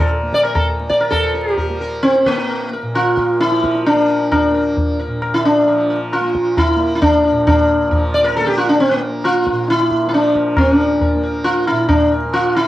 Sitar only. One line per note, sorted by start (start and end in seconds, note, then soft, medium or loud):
0.34 0.44 D5 loud
0.45 0.54 A#4 medium
0.55 0.66 A4 medium
0.89 1.02 D5 medium
1.00 1.09 A#4 medium
1.10 1.52 A4 medium
1.10 1.33 A#4 soft
1.34 1.56 A#4 soft
1.52 1.76 G4 medium
1.57 1.79 A#4 soft
1.81 2.02 A#4 soft
2.03 2.27 C4 loud
2.26 2.69 A#3 medium
2.51 2.71 A#4 soft
2.73 2.94 A#4 soft
2.95 3.40 F4 loud
3.18 3.39 A#4 soft
3.41 3.86 E4 loud
3.64 3.85 A#4 soft
3.86 4.30 D4 medium
4.09 4.30 A#4 soft
4.32 4.95 D4 medium
4.54 4.75 A#4 soft
4.99 5.20 A#4 soft
5.22 5.43 A#4 soft
5.34 5.45 E4 medium
5.45 5.97 D4 medium
5.68 5.88 A#4 soft
5.90 6.11 A#4 soft
6.13 6.57 F4 medium
6.58 6.94 E4 loud
6.95 7.01 E4 medium
7.02 7.46 D4 medium
7.24 7.45 A#4 soft
7.47 8.16 D4 medium
7.91 8.12 A#4 soft
8.14 8.24 D5 loud
8.24 8.36 A#4 loud
8.36 8.43 A4 loud
8.44 8.58 G4 medium
8.44 8.47 A4 medium
8.58 8.69 F4 medium
8.69 8.80 D4 medium
8.80 8.92 C4 medium
8.91 9.02 A#3 medium
9.25 9.70 F4 loud
9.70 10.08 E4 loud
10.09 10.14 E4 medium
10.14 10.57 D4 medium
10.36 10.56 A#4 soft
10.58 11.20 D4 medium
10.79 11.00 A#4 soft
11.01 11.22 A#4 soft
11.23 11.44 A#4 soft
11.44 11.67 F4 loud
11.67 11.88 E4 medium
11.89 12.10 D4 medium
12.12 12.32 A#4 soft
12.34 12.56 F4 loud
12.57 12.68 E4 medium